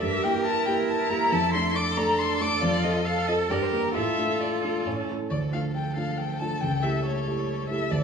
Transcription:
0.02 G2 G4 A#4 E5
0.24 A#3 E4 G4 G5
0.45 E4 A5
0.66 A#3 E4 G4 G5
0.88 A5
1.09 A#3 E4 G4 A#5
1.31 F2 A4 A5
1.54 A3 D4 A4 C6
1.75 D4 D6
1.97 A3 D4 A4 A#5
2.19 C6
2.41 A3 D4 A4 D6
2.62 F2 F4 D5
2.84 C4 F4 A4 D#5
3.05 A4 F5
3.28 C4 F4 A4 D#5
3.50 G2 G4 A#4 D5
3.62 C5
3.72 A#3 D4 G4 A#4
3.95 A2 F4 A4 E5
4.18 A3 D4 F4
4.41 D5
4.64 A3 D4 F4
4.86 A2 C#4
5.08 A3 C#4 E4
5.30 D2 F3 A4 D5
5.53 A3 D4 F4 F5
5.74 G5
5.96 A3 D4 F4 F5
6.18 G5
6.39 A3 D4 F4 A5
6.60 C#2 G3 G5
6.83 A3 E4 G4 E5
7.05 C#5
7.27 A3 E4 G4
7.69 A3 E4 G4 E5
7.90 D2 F3 A4 D5

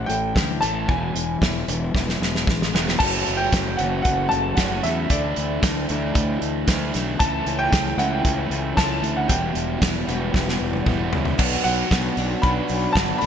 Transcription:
Already playing: C#4 E4
0.06 A1 A2 E3 A3 G5, closed hi-hat
0.35 D2 A2 E3, kick, snare
0.61 A1 A2 E3 A3 A5, closed hi-hat
0.88 E1 E2 B2 E3 G#5, kick
1.14 E1 E2 B2, closed hi-hat
1.41 E1 E2 B2 E4, kick, snare
1.68 E1 E2 B2 B3, closed hi-hat
1.94 E1 E2 B2 E4, kick, snare
2.09 snare
2.20 E1 E2 B2 G#3, snare
2.35 snare
2.47 A1 E2 B2 E3, kick, snare
2.62 snare
2.73 E1 E2 B2 E3 G#3, snare
2.88 snare
2.98 F#1 F#2 C#3 E3 F#3 A3 C#4 F#4 A5, kick, crash
3.26 F#1, closed hi-hat
3.37 G5
3.53 F#1, kick, snare, closed hi-hat
3.77 F#1 F#2 C#3 E3 F#3 A3 C#4 F#4 F#5, closed hi-hat
4.02 F#1 F#5, kick, closed hi-hat
4.29 F#1 A5, closed hi-hat
4.55 F#1 F#2 C#3 F#3 A3 C#4 F#5, kick, snare, closed hi-hat
4.59 F#4
4.83 E2 E5, snare, closed hi-hat
5.09 D2 D3 E3 A3 D4 E4 D5, kick, closed hi-hat
5.36 D2, closed hi-hat
5.63 D2, kick, snare, closed hi-hat
5.89 D2 D3 E3 A3 D4 E4, closed hi-hat
6.15 D2, kick, closed hi-hat
6.42 D2, closed hi-hat
6.67 D2 D3 A3 D4 E4, kick, snare, closed hi-hat
6.94 B1, snare, closed hi-hat
7.19 C#2 C#3 E3 A3 C#4 E4 A5, kick, closed hi-hat
7.46 C#2, closed hi-hat
7.59 G5
7.72 C#2, kick, snare, closed hi-hat
7.97 C#2 C#3 E3 A3 C#4 E4 F#5, closed hi-hat
8.12 G5
8.25 C#2, kick, closed hi-hat
8.50 C#2, closed hi-hat
8.77 C#2 C#3 E3 A3 C#4 E4 A5, kick, snare, closed hi-hat
9.03 D2, closed hi-hat
9.17 F#5
9.28 E1 E2 B2 E3 G3 B3 E4 F#4 G5, kick, closed hi-hat
9.55 E1, closed hi-hat
9.81 E1, kick, snare, closed hi-hat
10.06 E1 E2 B2 E3 G3 B3 E4 F#4, closed hi-hat
10.34 E1, kick, snare
10.49 snare
10.60 E1
10.73 high tom
10.86 E1 E2 B2 E3 G3 B3 E4, kick, mid tom
11.13 C#2, floor tom
11.25 floor tom
11.38 B1 B2 F#3 B3 D4 F#4, kick, crash, shaker
11.64 B1 F#5, open hi-hat, shaker
11.91 B1 B2 F#3 B3 D4 F#4, kick, snare, shaker
12.17 B1 B2 F#3 B3 D4 F#4, open hi-hat, shaker
12.42 B1 B2 F#3 B3 D4 F#4 B5, kick, shaker
12.68 B1, open hi-hat, shaker
12.93 G1 B2 F#3 B3 A5, kick, shaker
12.97 D4 F#4, snare
13.18 A2 D3 E3 A3 B5, open hi-hat, shaker
13.22 A1 D4 E4

